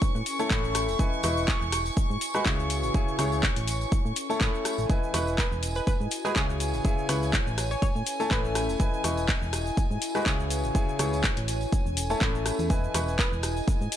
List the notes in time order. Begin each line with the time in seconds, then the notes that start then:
Already playing: C#4 E4 C#5 G#5 C#6
0.00 A4, kick, tambourine, shaker
0.15 A2, shaker
0.26 open hi-hat, tambourine, shaker
0.39 A3 E4 A4 C#5 A5, tambourine, shaker
0.51 A1 A3 E4 A4 C#5 B5, kick, clap, shaker
0.64 shaker
0.75 cross-stick, open hi-hat, tambourine, shaker
0.88 E1, tambourine, shaker
0.99 E3 E4 B4 D#5 G#5, kick, shaker
1.13 shaker
1.19 D#5, tambourine
1.24 E1 E3 E4 B4 D#5 C#6, cross-stick, open hi-hat, shaker
1.37 tambourine, shaker
1.48 kick, clap, shaker
1.61 E1, shaker
1.72 cross-stick, open hi-hat, tambourine, shaker
1.86 tambourine, shaker
1.97 F#4, kick, shaker
2.10 G#2 B4, shaker
2.21 open hi-hat, tambourine, shaker
2.34 G#3 F#4 B4 D#5 B5, cross-stick, tambourine, shaker
2.46 C#2 C#3 E4 G#4 C#5 C#6, kick, clap, tambourine, shaker
2.59 shaker
2.70 E4, open hi-hat, tambourine, shaker
2.76 C#5
2.83 G#1, tambourine, shaker
2.94 C#3 E4 G#4 C#5 G#5, kick, tambourine, shaker
3.08 shaker
3.19 C#2 C#3 E4 G#4 C#5 C#6, cross-stick, open hi-hat, tambourine, shaker
3.32 tambourine, shaker
3.43 kick, clap, tambourine, shaker
3.56 A1, open hi-hat, shaker
3.68 C#4, open hi-hat, tambourine, shaker
3.81 tambourine, shaker
3.92 kick, tambourine, shaker
3.97 A4
4.05 A2, shaker
4.16 open hi-hat, tambourine, shaker
4.30 A3 E4 A4 C#5 A5, tambourine, shaker
4.41 A1 A3 E4 A4 C#5 B5, kick, clap, shaker
4.55 shaker
4.65 cross-stick, open hi-hat, tambourine, shaker
4.78 A1, tambourine, shaker
4.89 E3 E4 B4 D#5 G#5, kick, tambourine, shaker
5.03 shaker
5.12 E1 E3 E4 B4 D#5 C#6, cross-stick, open hi-hat, tambourine, shaker
5.27 tambourine, shaker
5.38 B4, kick, clap, tambourine, shaker
5.52 E1, shaker
5.63 open hi-hat, tambourine, shaker
5.75 B4, tambourine, shaker
5.87 F#4 B4, kick, tambourine, shaker
6.00 G#2, shaker
6.11 open hi-hat, tambourine, shaker
6.25 G#3 F#4 G#4 B4 D#5 B5, cross-stick, tambourine, shaker
6.36 C#2 C#3 E4 G#4 C#5, kick, clap, shaker
6.50 shaker
6.60 E4, open hi-hat, tambourine, shaker
6.66 C#5
6.73 G#1, tambourine, shaker
6.84 C#3 E4 G#4 C#5 G#5, kick, tambourine, shaker
6.98 shaker
7.09 C#2 C#3 E4 G#4 B4 C#5 C#6, cross-stick, open hi-hat, tambourine, shaker
7.23 tambourine, shaker
7.33 kick, clap, tambourine, shaker
7.47 A1, shaker
7.58 C#4, cross-stick, open hi-hat, tambourine, shaker
7.71 C#5, tambourine, shaker
7.77 A4
7.82 C#5, kick, tambourine, shaker
7.95 A2, shaker
8.06 open hi-hat, tambourine, shaker
8.20 A3 E4 A4 C#5 A5, tambourine, shaker
8.31 A1 A3 E4 A4 B4 C#5 B5, kick, clap, shaker
8.45 shaker
8.55 cross-stick, open hi-hat, tambourine, shaker
8.69 E1, tambourine, shaker
8.79 E3 E4 B4 D#5 G#5, kick, tambourine, shaker
8.86 D#5
8.94 shaker
9.04 E1 E3 E4 B4 D#5 C#6, cross-stick, open hi-hat, tambourine, shaker
9.17 tambourine, shaker
9.29 kick, clap, shaker
9.42 E1, shaker
9.53 cross-stick, open hi-hat, tambourine, shaker
9.65 tambourine, shaker
9.77 F#4, kick, tambourine, shaker
9.87 G#2 B4
9.91 shaker
10.01 open hi-hat, tambourine, shaker
10.15 G#3 F#4 B4 D#5 B5, cross-stick, tambourine, shaker
10.26 C#2 C#3 E4 G#4 C#5 C#6, kick, clap, tambourine, shaker
10.40 shaker
10.50 E4, open hi-hat, tambourine, shaker
10.61 G#1 C#5, tambourine, shaker
10.75 C#3 E4 G#4 C#5 G#5, kick, tambourine, shaker
10.89 shaker
10.99 C#2 C#3 E4 G#4 C#5 C#6, cross-stick, open hi-hat, tambourine, shaker
11.13 tambourine, shaker
11.24 kick, clap, tambourine, shaker
11.37 A1, open hi-hat, shaker
11.48 C#4, open hi-hat, tambourine, shaker
11.61 tambourine, shaker
11.71 A4, kick, tambourine, shaker
11.86 E1, shaker
11.97 open hi-hat, tambourine, shaker
12.10 A3 E4 A4 C#5 A5, tambourine, shaker
12.21 A1 A3 E4 A4 C#5 B5, kick, clap, shaker
12.35 shaker
12.46 cross-stick, open hi-hat, tambourine, shaker
12.59 E2, tambourine, shaker
12.70 E3 E4 B4 D#5 G#5, kick, tambourine, shaker
12.84 shaker
12.93 E1 E3 E4 B4 D#5 C#6, cross-stick, open hi-hat, tambourine, shaker
13.08 tambourine, shaker
13.19 B4, kick, clap, tambourine, shaker
13.32 E1, shaker
13.43 cross-stick, open hi-hat, tambourine, shaker
13.56 tambourine, shaker
13.68 F#4, kick, tambourine, shaker
13.81 G#2, shaker
13.92 open hi-hat, tambourine, shaker